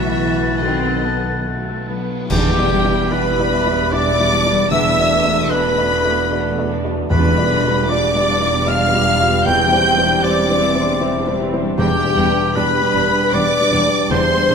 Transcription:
Already playing: B1 B2 E3 F#3 A3 B3 F#4 B4 E5 F#5 A6
0.19 F#4
0.41 A4
0.60 D#3 F#3 C4 F#4 A4 D#5
0.83 F#5
1.03 B3 A5
1.26 F#5
1.46 A3 F#4
1.69 A4
1.88 F#3 B3
2.10 B3
2.29 E1 E2 G3 B3 D4 G4 G5, concert bass drum, crash
2.50 B2 B3 E4
2.58 G3 E4 D5
2.70 G3 D4
2.84 G3 E4 D5
2.90 B3 E4
3.10 G3 D4 E4 B4 D5 B5
3.30 B3 E4 G4
3.39 G3 E4 D5
3.50 G3 D4 E5
3.66 G3 E4 D5
3.71 B3 E4 D6
3.90 G3 D4 E4 D5 E5 D6
4.10 B3 E4
4.20 G3 E4 D5
4.30 G3 D4 E4
4.46 G3 E4 D5
4.51 G3 B3 E4
4.70 E2 A3 B3 D4 E5 E6
4.90 B2 A3 B3
4.99 A3 F#4 D5
5.10 A3 B3 D4
5.24 A3 F#4 D5
5.30 A3 B3 F#4
5.50 A3 B3 D4 F#4 B4 D5 B5
5.70 A3 B3 A4
5.78 A3 F#4 D5
5.90 B3 D4 F#5
6.05 A3 F#4 D5
6.10 A3 B3 D6
6.31 A3 B3 D4 F#4 D5 F#5
6.51 A3 B3 D5
6.58 A3 F#4 D5
6.70 B3 D4 F#4
6.84 A3 F#4 D5
6.90 A3 B3
7.10 E1 E2 F3 D4 B4 B5
7.30 B2 G3 B3
7.37 G3 F4 D5
7.49 F3 G3 D4
7.64 G3 F4 D5
7.69 G3 B3 F4
7.89 F3 G3 D4 F4 D5 D6
8.09 G3 B3 G4
8.16 G3 F4 D5
8.29 F3 D4 F5
8.41 G3 F4 D5
8.47 G3 B3 D6
8.67 F3 G3 D4 F4 D5 F5 F6
8.86 G3 B3 D5
8.93 G3 F4 D5
9.05 F3 D4 F4
9.20 G3 F4 D5
9.26 G3 B3
9.45 E2 E3 C4 G5 G6
9.64 E3 G3 D4
9.72 G3 E4 C5
9.83 E3 G3 C4
9.97 G3 E4 C5
10.02 G3 D4 E4
10.22 E3 G3 C4 E4 C5 D5 D6
10.41 G3 D4 G4
10.49 G3 E4 C5
10.61 E3 C4 E5
10.75 G3 E4 C5
10.80 G3 D4 C6
11.00 E3 G3 C4 E4 C5 E5
11.19 G3 D4 C5
11.27 G3 E4 C5
11.39 E3 C4 E4
11.53 G3 E4 C5
11.58 G3 D4
11.77 E1 E2 G3 D4 G4 G5
11.96 B2
12.04 G3 D4 B4
12.16 E1 E2 G3 D4
12.30 G3 D4 B4
12.35 D4
12.54 E1 E2 G3 D4 B4 B5
12.74 G4
12.82 G3 D4 B4
12.93 E1 E2 G3 D4 D5
13.08 G3 D4 B4
13.12 B5
13.32 E1 E2 G3 D4 B4 D5 D6
13.52 B4
13.60 G3 D4 B4
13.71 E1 E2 G3 D4
13.86 G3 D4 B4
13.90 G3
14.09 E1 E2 G3 D4 C5 C6
14.29 E3
14.37 G3 D4 C5
14.49 E1 E2 G3 D4

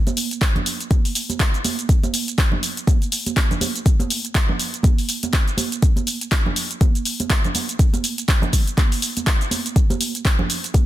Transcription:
0.07 closed hi-hat, high conga, shaker
0.17 open hi-hat, shaker
0.31 closed hi-hat, shaker
0.41 kick, clap, closed hi-hat, shaker
0.56 closed hi-hat, high conga, low conga
0.66 open hi-hat, shaker
0.81 closed hi-hat, shaker
0.91 kick, closed hi-hat, high conga, shaker
1.05 open hi-hat, shaker
1.15 open hi-hat, shaker
1.30 closed hi-hat, high conga, shaker
1.40 kick, clap, closed hi-hat, shaker
1.54 closed hi-hat, shaker
1.65 open hi-hat, high conga, shaker
1.79 closed hi-hat, shaker
1.89 kick, closed hi-hat, shaker
2.03 closed hi-hat, high conga, shaker
2.14 open hi-hat, shaker
2.28 closed hi-hat, shaker
2.38 kick, clap, closed hi-hat, shaker
2.52 high conga, low conga
2.63 open hi-hat, shaker
2.77 closed hi-hat, shaker
2.87 kick, closed hi-hat, high conga, shaker
3.02 closed hi-hat, shaker
3.12 open hi-hat, shaker
3.26 closed hi-hat, high conga, shaker
3.37 kick, clap, closed hi-hat, shaker
3.51 closed hi-hat, low conga, shaker
3.61 open hi-hat, high conga, shaker
3.76 closed hi-hat, shaker
3.86 kick, closed hi-hat, shaker
3.99 closed hi-hat, high conga, shaker
4.10 open hi-hat, shaker
4.25 closed hi-hat, shaker
4.35 kick, clap, closed hi-hat, shaker
4.49 high conga, low conga
4.60 open hi-hat, shaker
4.74 closed hi-hat, shaker
4.83 kick, closed hi-hat, high conga, shaker
4.98 open hi-hat, shaker
5.09 open hi-hat, shaker
5.23 closed hi-hat, high conga, shaker
5.33 kick, clap, closed hi-hat, shaker
5.48 closed hi-hat, shaker
5.57 open hi-hat, high conga, shaker
5.72 closed hi-hat, shaker
5.82 kick, closed hi-hat, shaker
5.96 closed hi-hat, high conga, shaker
6.07 open hi-hat, shaker
6.21 closed hi-hat, shaker
6.32 kick, clap, closed hi-hat, shaker
6.46 high conga, low conga
6.56 open hi-hat, shaker
6.71 closed hi-hat, shaker
6.81 kick, closed hi-hat, high conga, shaker
6.95 closed hi-hat, shaker
7.05 open hi-hat, shaker
7.20 closed hi-hat, high conga, shaker
7.30 kick, clap, closed hi-hat, shaker
7.44 closed hi-hat, low conga, shaker
7.55 open hi-hat, high conga, shaker
7.69 closed hi-hat, shaker
7.79 kick, closed hi-hat, shaker
7.93 closed hi-hat, high conga, shaker
8.04 open hi-hat, shaker
8.18 closed hi-hat, shaker
8.28 kick, clap, closed hi-hat, shaker
8.42 closed hi-hat, high conga, low conga
8.53 kick, open hi-hat, shaker
8.67 closed hi-hat, shaker
8.78 kick, clap, closed hi-hat, high conga, shaker
8.92 open hi-hat, shaker
9.02 open hi-hat, shaker
9.17 closed hi-hat, high conga, shaker
9.27 kick, clap, closed hi-hat, shaker
9.41 closed hi-hat, shaker
9.51 open hi-hat, high conga, shaker
9.66 closed hi-hat, shaker
9.76 kick, closed hi-hat, shaker
9.90 closed hi-hat, high conga, shaker
10.01 open hi-hat, shaker
10.15 closed hi-hat, shaker
10.25 kick, clap, closed hi-hat, shaker
10.39 high conga, low conga
10.50 open hi-hat, shaker
10.64 closed hi-hat, shaker
10.74 kick, closed hi-hat, high conga, shaker

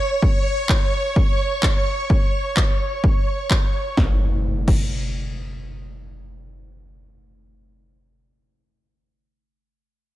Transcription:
Already playing: C#5 C#6
0.22 kick
0.69 kick, clap
1.16 kick
1.63 kick, clap
2.10 kick
2.57 kick, clap
3.04 kick
3.50 kick, clap
3.97 kick, snare, impact
4.68 kick, crash

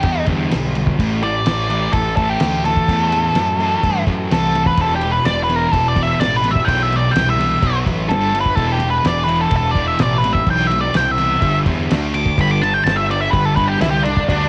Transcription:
Already playing: G4
0.03 E2 G2 D3, kick, crash
0.26 E2 G2 D3 G3, kick, crash
0.51 B1 G2 D3, snare, crash
0.75 G2 D3, crash
0.87 kick
0.99 A1 A2 E3 A3, kick, crash
1.23 A2 E3 D5, crash
1.46 A1 A2 E3, snare, crash
1.69 A2 E3 A3, crash
1.93 A1 A2 E3 A4, kick, crash
2.16 A2 E3 A3 A4, kick, crash
2.29 G4
2.40 D2 A2 E3, snare, crash
2.65 A2 E3 A4, crash
2.77 kick
2.88 E2 A2 E3 A3, kick, crash
3.12 A2 E3, crash
3.35 F#2 A2 E3, snare, crash
3.59 A2 E3 A3, crash
3.83 G2 A2 E3, kick, crash
4.06 F#2 A2 E3 A3, kick, crash
4.30 C2 A2 E3 A4, snare, crash
4.55 A2 E3, crash
4.66 B4, kick
4.77 E1 E2 B2 E3 A4, kick, crash
4.96 G4
5.01 E2 B2, crash
5.12 B4
5.25 E1 E2 B2 D5, snare, crash
5.44 B4
5.49 E2 B2 E3, crash
5.56 A#4
5.72 E1 E2 B2 A4, kick, crash
5.88 D5
5.96 E2 B2 E3, kick, crash
6.03 E5
6.19 A1 E2 B2 D5, snare, crash
6.37 B4
6.44 E2 B2, crash
6.51 E5
6.56 kick
6.65 B1 E2 G5, kick, crash
6.69 B2 E3
6.83 E5
6.92 E2 B2 D5, crash
7.11 C2 G5
7.16 E2 B2, snare, crash
7.30 E5
7.38 E2 B2 E3, crash
7.61 B1 B2 F#3 B3, kick, crash
7.85 A1 B2 F#3 B3, kick, crash
8.09 G1 G2 D3 G3 A4, snare, crash
8.34 G2 D3, crash
8.40 B4
8.46 kick
8.55 E1 E2 B2 E3 A4, kick, crash
8.72 G4
8.80 E2 B2, crash
8.90 B4
9.03 E1 E2 B2 D5, snare, crash
9.24 E2 B2 B4
9.28 E3, crash
9.41 A4
9.51 E1 E2 B2, kick, crash
9.56 A4
9.71 E2 D5
9.75 B2 E3, kick, crash
9.88 E5
9.99 A1 E2 B2 D5, snare, crash
10.18 B4
10.24 E2 B2, crash
10.33 E5, kick
10.47 B1 E2 B2 E3 G5, kick, crash
10.67 E5
10.71 E2 B2, crash
10.80 D5
10.94 C2 E2 B2 G5, snare, crash
11.11 E5
11.18 E2 B2 E3, crash
11.41 G1 G2 D3 G3, kick, crash
11.66 E2 G2 D3 G3, kick, crash
11.90 D2 D3 A3 D4, snare, crash
12.14 D3 A3 D6, crash
12.26 kick
12.37 G1 G2 D3 G3 B5, kick, crash
12.51 D6
12.61 G2 D3 A5, crash
12.74 G5
12.84 G1 G2 A5, snare, crash
12.88 D3
12.97 E5
13.10 G2 D3 G3 D5, crash
13.21 E5
13.30 G1 G2 D3 B4, kick, crash
13.45 A4
13.56 G2 D3 G3 B4, kick, crash
13.68 G4
13.80 C2 G2 D3 E4, snare, crash
13.91 G4
14.03 G2 D3 D4, crash
14.17 kick
14.29 D2 G2 D3 G3 D4, kick, crash

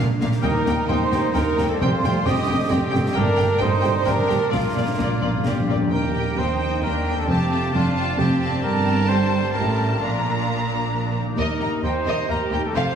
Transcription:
Already playing: A#2 A#3 D4 F4
0.21 A#1 A#2 A#3 D4 F5, snare
0.25 D#3
0.30 A#3, snare
0.34 D#4
0.39 D#3 G4 A#4 A#5, concert bass drum, crash
0.43 D#2 G3 A#3 D#4 A#4 G5
0.66 D#2 A#3 D#4 G5, snare
0.88 D#2 A#3 D#4 C5 G5 C6, concert bass drum
1.11 D#2 A#3 D#4 G5, snare
1.34 D#2 A#3 D#4 A#4 G5 A#5, concert bass drum, snare
1.58 D#2 A#3 D#4 G5, snare
1.63 F2
1.68 G3 C4 A4 A5
1.72 G4
1.80 F1 F2 A3 C4 F4 G4 C5 G5 C6, concert bass drum
2.03 F1 F2 A3 G4 G5, snare
2.25 F1 F2 A3 G4 D#5 G5 D#6, concert bass drum, snare
2.48 F1 F2 A3 G4 G5
2.70 F1 F2 C4 G4 G5, concert bass drum, snare
2.74 A3
2.91 F2 G5
2.95 F1 G2 A3 G4, snare
3.02 A#3, snare
3.07 D4
3.11 G2 G4 A#4 G5
3.16 G1 G3 A3 D4 G4 A#4 A#5, concert bass drum
3.36 G1 G2 G5, snare
3.40 A3 G4
3.59 G1 G2 D#4 C5 G5 C6, concert bass drum
3.63 A3 G4
3.82 G1 G2 A3 G4 G5, snare
4.04 G1 G2 A3 D4 G4 A#4 G5 A#5, concert bass drum, snare
4.28 G1 G2 A3 G4 G5, snare
4.34 A#2
4.39 A#3
4.43 D4
4.48 A#2 F4 D5 F5
4.52 A#1 A#2 F3 A#3 D4 F4, concert bass drum, snare
4.60 A#2
4.68 A#2
4.75 A#1 A#2 A#3 F4 D5
4.84 A#2
4.92 A#2
4.98 A#1 A#2 A#3 F4 D5, concert bass drum, snare
5.07 A#2
5.15 A#2
5.22 A#1 A#2 A#3 F4 D5
5.29 A#2
5.37 A#2
5.44 A#1 A#2 A#3 F4 G4 D5, concert bass drum, snare
5.52 A#2
5.59 A#2
5.67 A#1 A#2 A#3 F4 D5
5.74 A#2 D#3
5.78 A#2 A#3
5.83 G4
5.91 D#2 G3 A#3 G4 A#4 D#5 G5
6.12 A#3 D#5 G5
6.36 D#2 A#3 D#4 C5 D#5 G5
6.58 A#3 D#5 G5
6.81 D#2 G3 A#3 D4 A#4 D#5 G5
7.04 A#3 D#5 G5
7.11 F2
7.15 A3 A4
7.20 F4
7.24 A3 C4 G4
7.28 F1 F2 C4 F4 G4 G5 A5
7.50 F4 G5 A5
7.71 F1 F2 A3 C4 D4 F4 G5 A5
7.95 F4 G5 A5
8.17 F1 F2 A3 C4 F4 G4 G5 A5
8.40 F4 G5 A5
8.45 G2
8.50 A3
8.54 D4
8.59 G3 D4 G4 G5 A5
8.63 G1 G2 D4 A#4
9.08 G3 C5
9.53 A1 A2 G3 D4 A#4 G5 A5
9.81 A#2
9.86 A#3
9.90 D4
9.95 F4
9.99 A#1 A#2 A#3 D4 F4 F5 A#5
10.45 C4
10.68 D4
10.90 C4
11.12 A#3
11.19 D#3
11.23 A#3
11.28 D#4
11.33 G4
11.37 D#2 D#3 A#3 D#4 G4 A#4 D#5
11.60 D#2 D#4 G5 A#5
11.82 D#2 D#4 C5 D#5 G5
12.05 D#2 D#4 A#4 D#5
12.29 D#2 D#4 G4 A#4 G5 A#5
12.51 D#2 D#4 D#5 G5
12.56 F2
12.61 A3 A4
12.65 G4
12.70 F2 A4
12.74 F1 G3 F4 G4 A4 C5 F5

